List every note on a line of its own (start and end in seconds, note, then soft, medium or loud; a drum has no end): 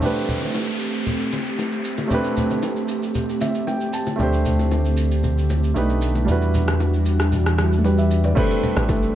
0.00 2.05 A3 medium
0.00 6.24 A3 medium
0.00 2.06 C4 medium
0.00 5.72 C4 medium
0.00 2.07 D4 medium
0.00 5.72 G4 medium
0.00 2.08 G4 medium
0.00 downlifter medium
0.00 low conga medium
0.00 shaker medium
0.06 2.08 B4 medium
0.16 shaker soft
0.28 low conga medium
0.28 shaker medium
0.42 low bongo medium
0.42 shaker soft
0.54 high bongo medium
0.54 shaker medium
0.68 shaker soft
0.79 shaker loud
0.94 shaker medium
1.06 low conga medium
1.06 shaker medium
1.21 shaker soft
1.32 low bongo medium
1.32 shaker medium
1.46 shaker soft
1.58 high bongo medium
1.58 shaker medium
1.72 shaker medium
1.84 shaker loud
1.97 low bongo medium
1.97 shaker medium
2.07 4.14 A3 medium
2.07 4.15 C4 medium
2.07 4.15 D4 medium
2.07 low conga medium
2.07 shaker medium
2.12 4.16 G4 medium
2.12 4.17 B4 medium
2.24 shaker soft
2.37 low conga medium
2.37 shaker medium
2.50 low bongo medium
2.50 shaker soft
2.62 high bongo medium
2.62 shaker medium
2.76 shaker soft
2.88 shaker loud
3.03 shaker medium
3.15 low conga medium
3.15 shaker medium
3.29 shaker soft
3.41 3.65 E5 medium
3.41 low bongo medium
3.41 shaker medium
3.55 shaker soft
3.67 3.92 G5 medium
3.67 high bongo medium
3.67 shaker medium
3.81 shaker medium
3.93 4.18 A5 medium
3.93 shaker loud
4.06 low bongo medium
4.06 shaker medium
4.16 5.73 D2 medium
4.16 5.74 D3 medium
4.16 5.71 A3 medium
4.16 5.72 C4 medium
4.16 5.73 D4 medium
4.16 low conga medium
4.16 shaker medium
4.21 5.74 G4 medium
4.21 5.74 C5 medium
4.33 shaker soft
4.45 low conga medium
4.45 shaker medium
4.59 low bongo medium
4.59 shaker soft
4.71 high bongo medium
4.71 shaker medium
4.85 shaker soft
4.97 shaker loud
5.11 shaker medium
5.23 low conga medium
5.23 shaker medium
5.38 shaker soft
5.50 low bongo medium
5.50 shaker medium
5.64 shaker soft
5.74 6.27 B1 medium
5.74 6.28 D#3 medium
5.74 6.27 A3 medium
5.74 6.28 B3 medium
5.74 6.25 D4 medium
5.74 6.28 D#4 medium
5.74 6.29 G4 medium
5.74 6.29 B4 medium
5.74 high bongo medium
5.74 shaker medium
5.89 shaker medium
6.02 shaker loud
6.15 low bongo medium
6.15 shaker medium
6.25 8.33 E2 medium
6.25 8.35 E3 medium
6.25 8.05 G3 medium
6.25 8.35 G3 medium
6.25 8.06 D4 medium
6.25 8.35 D4 medium
6.25 8.07 E4 medium
6.25 8.35 F#4 medium
6.25 low conga medium
6.25 shaker medium
6.30 7.82 F#4 medium
6.30 7.83 B4 medium
6.42 shaker soft
6.54 low conga medium
6.54 shaker medium
6.68 cross-stick medium
6.68 low bongo medium
6.68 shaker soft
6.80 high bongo medium
6.80 shaker medium
6.94 shaker soft
7.05 shaker loud
7.20 cross-stick medium
7.20 shaker medium
7.32 low conga medium
7.32 shaker medium
7.46 cross-stick medium
7.46 shaker soft
7.58 cross-stick medium
7.58 low bongo medium
7.58 shaker medium
7.72 shaker soft
7.79 7.87 A3 medium
7.84 8.39 G3 medium
7.84 7.98 G4 medium
7.84 7.98 B4 medium
7.84 high bongo medium
7.84 shaker medium
7.98 8.23 E5 medium
7.98 shaker medium
8.11 shaker loud
8.24 8.37 B4 medium
8.24 8.49 D5 medium
8.24 low bongo medium
8.24 shaker medium
8.35 9.15 G3 medium
8.35 8.67 A3 loud
8.35 8.89 A3 loud
8.35 8.68 C4 medium
8.35 9.15 C4 medium
8.35 8.68 D4 medium
8.35 8.69 G4 medium
8.35 8.69 B4 loud
8.35 9.15 D5 medium
8.35 9.15 B5 medium
8.35 kick loud
8.35 crash medium
8.35 low conga medium
8.35 shaker medium
8.50 shaker soft
8.63 low conga medium
8.63 shaker medium
8.75 9.13 A1 medium
8.75 9.07 A3 medium
8.75 9.07 C4 medium
8.75 9.08 D4 medium
8.75 9.08 G4 medium
8.75 9.08 B4 medium
8.75 cross-stick medium
8.75 low bongo medium
8.75 shaker soft
8.89 9.15 A3 loud
8.89 kick medium
8.89 high bongo medium
8.89 low bongo medium
8.89 shaker medium
9.02 shaker soft